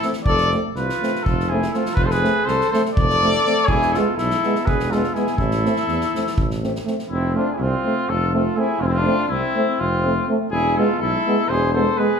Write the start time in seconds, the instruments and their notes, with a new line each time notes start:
0.02 euphonium A3 C4, snare
0.13 snare
0.25 tuba F1, flugelhorn A4, trumpet D5, kick
0.38 snare
0.51 euphonium A3 C4, snare
0.75 tuba C2, flugelhorn F4, trumpet B4, snare
0.89 snare
1.01 euphonium A3 C4, snare
1.15 snare
1.23 tuba F1, trumpet A4, kick
1.28 flugelhorn F4
1.40 snare
1.48 euphonium A3 C4, flugelhorn E4, trumpet G#4
1.62 snare
1.72 euphonium A3 C4, flugelhorn F4, trumpet A4, snare
1.85 snare
1.94 tuba F1, flugelhorn F4, trumpet B4, kick
2.03 flugelhorn A4, trumpet C5
2.10 flugelhorn G#4, trumpet B4, snare
2.23 euphonium A3 C4, snare
2.45 tuba C2, flugelhorn A4, trumpet C5, snare
2.61 snare
2.71 euphonium A3 C4, flugelhorn A4, trumpet C5, snare
2.85 snare
2.93 tuba F1, trumpet D5, kick
2.98 flugelhorn A4
3.10 snare
3.22 euphonium A3 C4, snare
3.33 snare
3.46 euphonium A3 C4, snare
3.57 snare
3.66 tuba E1, flugelhorn E4, trumpet G#4, kick
3.82 snare
3.92 euphonium G#3 B3, flugelhorn F4, trumpet A4, snare
4.16 tuba B1, flugelhorn E4, trumpet A4, snare
4.30 snare
4.43 euphonium G#3 B3, snare
4.55 snare
4.66 tuba E1, flugelhorn G#4, trumpet B4, kick
4.79 snare
4.90 euphonium G#3, flugelhorn F4, trumpet A4, snare
4.94 euphonium B3
5.03 snare
5.14 euphonium G#3 B3, flugelhorn E4, trumpet G#4, snare
5.27 snare
5.37 tuba A1, flugelhorn E4, trumpet A4, kick
5.51 snare
5.64 euphonium A3 C4, snare
5.76 snare
5.88 tuba E2, snare
6.01 snare
6.15 euphonium A3 C4, snare
6.27 snare
6.38 tuba A1, kick
6.51 snare
6.63 euphonium A3 C4, snare
6.75 snare
6.85 euphonium A3 C4, snare
6.99 snare
7.10 tuba F1, flugelhorn C4, trumpet E4
7.33 euphonium A3 C4, flugelhorn D4, trumpet F4
7.52 flugelhorn E4, trumpet G#4
7.60 tuba C2, flugelhorn C4, trumpet F4
7.84 euphonium A3 C4
8.08 tuba F1, trumpet A4
8.12 flugelhorn F4
8.33 euphonium A3 C4, flugelhorn F4, trumpet A4
8.55 euphonium A3 C4, trumpet G#4
8.60 flugelhorn E4
8.80 tuba F1, flugelhorn C4, trumpet F4
8.87 flugelhorn C4, trumpet E4
8.93 trumpet F4
8.99 flugelhorn D4
9.05 euphonium A3 C4
9.28 tuba C2, flugelhorn C4, trumpet E4
9.56 euphonium A3 C4
9.79 tuba F1, flugelhorn C4, trumpet F4
10.04 euphonium A3 C4
10.27 euphonium A3 C4
10.51 tuba E1, flugelhorn E4, trumpet G#4
10.77 euphonium G#3 B3, flugelhorn F4, trumpet A4
10.99 tuba B1, flugelhorn E4, trumpet A4
11.27 euphonium G#3 B3
11.48 tuba E1, flugelhorn G#4, trumpet C5
11.73 euphonium G#3 B3, flugelhorn A4, trumpet C5
11.97 euphonium G#3 B3, flugelhorn G#4, trumpet B4